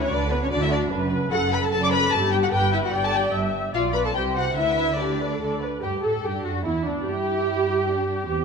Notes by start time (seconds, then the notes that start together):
Already playing: B4
0.02 C#4 C#5
0.11 D2 D3 D4 B4 D5
0.32 B3 B4
0.43 C#4 C#5
0.52 D2 D3 D4 F#4 D5
0.62 E4 E5
0.72 D4 D5
0.92 F#1 F#2 B4
1.32 F#1 F#2 F#4 A4 F#5
1.52 B4 B5
1.62 A4 A5
1.72 F#1 F#2 A4 A5
1.81 D5 D6
1.91 B4 B5
2.12 G1 G2 G4 A4 A5
2.32 G4 G5
2.43 F#4 F#5
2.52 G1 G2 G4 B4 G5
2.73 E4 E5
2.84 F#4 F#5
2.93 G1 G2 G4 D5 G5
3.04 A4 A5
3.14 G4 G5
3.33 G1 G2 E5
3.74 B1 B2 F4 D5 F5
3.95 B4 B5
4.05 A4 A5
4.15 C2 C3 G4 C5 G5
4.36 F#4 F#5
4.56 D2 D3 E4 B4 E5
4.98 D4 G4 D5
5.20 B4
5.32 A4
5.40 D2 D3 A4
5.53 D5
5.63 B4
5.82 G2 G4
6.03 A2 A4
6.24 G2 D4 G4
6.44 F#2 F#4
6.65 E2 B3 E4
6.86 D2 D4
7.07 G2 E4 G4
7.88 D4
8.28 E2 C4 G4